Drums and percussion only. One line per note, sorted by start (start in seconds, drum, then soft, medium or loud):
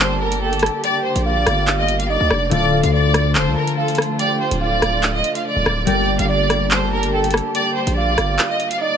0.00 closed hi-hat medium
0.32 closed hi-hat medium
0.53 closed hi-hat medium
0.59 cross-stick loud
0.59 closed hi-hat medium
0.66 closed hi-hat medium
0.84 closed hi-hat medium
1.16 closed hi-hat medium
1.46 cross-stick loud
1.46 closed hi-hat medium
1.67 clap loud
1.67 closed hi-hat medium
1.88 closed hi-hat medium
2.00 closed hi-hat medium
2.31 cross-stick loud
2.51 closed hi-hat medium
2.83 closed hi-hat medium
3.14 cross-stick loud
3.14 closed hi-hat medium
3.35 clap loud
3.35 closed hi-hat medium
3.67 closed hi-hat medium
3.88 closed hi-hat medium
3.95 cross-stick loud
3.95 closed hi-hat medium
4.02 closed hi-hat medium
4.19 closed hi-hat medium
4.51 closed hi-hat medium
4.82 cross-stick loud
4.82 closed hi-hat medium
5.03 clap loud
5.03 closed hi-hat medium
5.24 closed hi-hat medium
5.35 closed hi-hat medium
5.66 cross-stick loud
5.87 closed hi-hat medium
6.19 closed hi-hat medium
6.50 cross-stick loud
6.50 closed hi-hat medium
6.71 clap loud
6.71 closed hi-hat medium
7.03 closed hi-hat medium
7.24 closed hi-hat medium
7.31 cross-stick loud
7.31 closed hi-hat medium
7.37 closed hi-hat medium
7.55 closed hi-hat medium
7.87 closed hi-hat medium
8.18 cross-stick loud
8.18 closed hi-hat medium
8.39 clap loud
8.39 closed hi-hat medium
8.60 closed hi-hat medium
8.71 closed hi-hat medium